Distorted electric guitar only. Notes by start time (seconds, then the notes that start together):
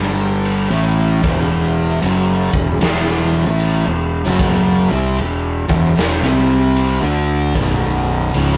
Already playing: G2 G3
0.70 A2 A3
1.22 E2 E3
2.02 F#2 F#3
2.53 E2
2.81 E2 E3
3.46 A2 A3
3.86 E2
4.25 F#2 F#3
4.90 C3 C4
5.18 E2
5.69 E2 E3
5.97 E2
6.22 C3 C4
7.02 D3 D4
7.55 B1 B2
8.34 C#2 C#3